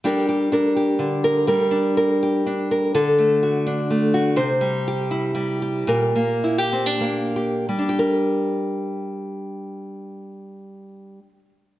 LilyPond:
\new Staff \with { instrumentName = "Nylon-string guitar" } { \time 3/4 \key g \dorian \tempo 4 = 120 << { <d' g' bes'>8 g'8 bes'8 g'4 bes'8 | bes'4 bes'8 g'4 bes'8 | a'4 fis'8 d'4 fis'8 | c''4 g'8 e'4 g'8 |
bes'4 e'16 g'16 c'16 d'8. g'8 | <d' g' bes'>2.~ | <d' g' bes'>2. | } \\ { g4 d'4 d4 | g8 d'4. d'4 | d8 a4. a4 | c8 g4. g4 |
bes,8 bes4. bes4 | g2.~ | g2. | } >> }